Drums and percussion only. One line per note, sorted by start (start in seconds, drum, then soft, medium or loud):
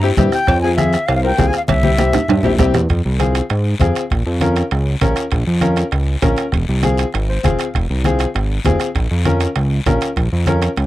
0.17 bombo low medium
0.17 bombo rim medium
0.17 high conga medium
0.17 low conga medium
0.17 low timbale medium
0.17 short guiro medium
0.32 bombo rim medium
0.32 short guiro medium
0.47 bombo low medium
0.47 bombo rim medium
0.47 cowbell loud
0.47 high conga soft
0.47 long guiro medium
0.78 bombo rim medium
0.78 high conga medium
0.78 short guiro medium
0.93 bombo rim medium
0.93 short guiro medium
1.08 bombo rim medium
1.08 cowbell medium
1.08 high conga soft
1.08 long guiro medium
1.38 bombo low medium
1.38 bombo rim medium
1.38 high conga medium
1.38 low timbale medium
1.38 short guiro medium
1.53 bombo rim medium
1.53 short guiro medium
1.68 bombo low medium
1.68 bombo rim medium
1.68 cowbell loud
1.68 high conga loud
1.68 long guiro medium
1.83 high conga medium
1.98 bombo rim medium
1.98 high conga medium
1.98 short guiro medium
2.13 bombo rim medium
2.13 low conga loud
2.13 high timbale medium
2.13 short guiro medium
2.28 bombo rim medium
2.28 cowbell medium
2.28 low conga medium
2.28 high timbale medium
2.28 long guiro medium
2.43 low conga medium
2.43 low timbale medium
2.58 bombo low medium
2.58 bombo rim medium
2.58 low conga medium
2.58 low timbale loud
2.58 short guiro medium
2.74 bombo rim medium
2.74 low conga medium
2.74 low timbale medium
2.74 short guiro medium
2.89 bombo low medium
2.89 bombo rim medium
2.89 high conga soft
2.89 high timbale medium
2.89 long guiro medium
3.20 bombo rim medium
3.20 high conga medium
3.20 high timbale medium
3.20 short guiro medium
3.35 bombo rim medium
3.35 high timbale medium
3.35 short guiro medium
3.49 bombo rim medium
3.49 high conga soft
3.49 high timbale medium
3.49 long guiro medium
3.79 bombo low medium
3.79 bombo rim medium
3.79 high conga medium
3.79 high timbale medium
3.79 short guiro medium
3.95 bombo rim medium
3.95 high timbale medium
3.95 short guiro medium
4.10 bombo low medium
4.10 bombo rim medium
4.10 high conga soft
4.10 high timbale medium
4.10 long guiro medium
4.41 bombo rim medium
4.41 high conga medium
4.41 high timbale medium
4.41 short guiro medium
4.56 bombo rim medium
4.56 high timbale medium
4.56 short guiro medium
4.71 bombo rim medium
4.71 high conga soft
4.71 high timbale medium
4.71 long guiro medium
5.01 bombo low medium
5.01 bombo rim medium
5.01 high conga medium
5.01 high timbale medium
5.01 low timbale medium
5.01 short guiro medium
5.16 bombo rim medium
5.16 high timbale medium
5.16 short guiro medium
5.31 bombo low medium
5.31 bombo rim medium
5.31 high conga soft
5.31 high timbale medium
5.31 long guiro medium
5.61 bombo rim medium
5.61 high conga medium
5.61 high timbale medium
5.61 short guiro medium
5.76 bombo rim medium
5.76 high timbale medium
5.76 short guiro medium
5.91 bombo rim medium
5.91 high conga soft
5.91 high timbale medium
5.91 long guiro medium
6.22 bombo low medium
6.22 bombo rim medium
6.22 high conga medium
6.22 high timbale medium
6.22 low timbale medium
6.22 short guiro medium
6.36 bombo rim medium
6.36 high timbale medium
6.36 short guiro medium
6.52 bombo low medium
6.52 bombo rim medium
6.52 high conga soft
6.52 high timbale medium
6.52 long guiro medium
6.83 bombo rim medium
6.83 high conga medium
6.83 high timbale medium
6.83 short guiro medium
6.97 bombo rim medium
6.97 high timbale medium
6.97 short guiro medium
7.13 bombo rim medium
7.13 high conga soft
7.13 high timbale medium
7.13 long guiro medium
7.43 bombo low medium
7.43 bombo rim medium
7.43 high conga medium
7.43 high timbale medium
7.43 short guiro medium
7.59 bombo rim medium
7.59 high timbale medium
7.59 short guiro medium
7.74 bombo low medium
7.74 bombo rim medium
7.74 high conga soft
7.74 high timbale medium
7.74 long guiro medium
8.04 bombo rim medium
8.04 high conga medium
8.04 high timbale medium
8.04 short guiro medium
8.19 bombo rim medium
8.19 high timbale medium
8.19 short guiro medium
8.34 bombo rim medium
8.34 high conga soft
8.34 high timbale medium
8.34 long guiro medium
8.64 bombo low medium
8.64 bombo rim medium
8.64 high conga medium
8.64 high timbale medium
8.64 low timbale medium
8.64 short guiro medium
8.80 bombo rim medium
8.80 high timbale medium
8.80 short guiro medium
8.95 bombo low medium
8.95 bombo rim medium
8.95 high conga soft
8.95 high timbale medium
8.95 long guiro medium
9.25 bombo rim medium
9.25 high conga medium
9.25 high timbale medium
9.25 short guiro medium
9.40 bombo rim medium
9.40 high timbale medium
9.40 short guiro medium
9.56 bombo rim medium
9.56 high conga soft
9.56 high timbale medium
9.56 long guiro medium
9.86 bombo low medium
9.86 bombo rim medium
9.86 high conga medium
9.86 high timbale medium
9.86 low timbale medium
9.86 short guiro medium
10.01 bombo rim medium
10.01 high timbale medium
10.01 short guiro medium
10.16 bombo low medium
10.16 bombo rim medium
10.16 high conga soft
10.16 high timbale medium
10.16 long guiro medium
10.46 bombo rim medium
10.46 high conga medium
10.46 high timbale medium
10.46 short guiro medium
10.62 bombo rim medium
10.62 high timbale medium
10.62 short guiro medium
10.76 bombo rim medium
10.76 high conga soft
10.76 high timbale medium
10.76 long guiro medium